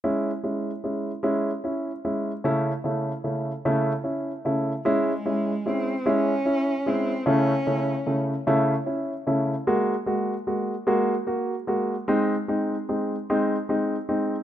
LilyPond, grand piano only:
\new Staff \with { instrumentName = "Grand piano" } { \time 6/8 \key cis \minor \tempo 4. = 50 <gis cis' e'>8 <gis cis' e'>8 <gis cis' e'>8 <gis cis' e'>8 <cis' e'>8 <gis cis' e'>8 | <cis a cis' e'>8 <cis a cis' e'>8 <cis a cis' e'>8 <cis a cis' e'>8 <cis' e'>8 <cis a cis' e'>8 | <gis cis' e'>8 <gis cis' e'>8 <gis cis' e'>8 <gis cis' e'>8 <cis' e'>8 <gis cis' e'>8 | <cis a cis' e'>8 <cis a cis' e'>8 <cis a cis' e'>8 <cis a cis' e'>8 <cis' e'>8 <cis a cis' e'>8 |
<gis ais fis'>8 <gis ais fis'>8 <gis ais fis'>8 <gis ais fis'>8 <ais fis'>8 <gis ais fis'>8 | <gis bis dis'>8 <gis bis dis'>8 <gis bis dis'>8 <gis bis dis'>8 <gis bis dis'>8 <gis bis dis'>8 | }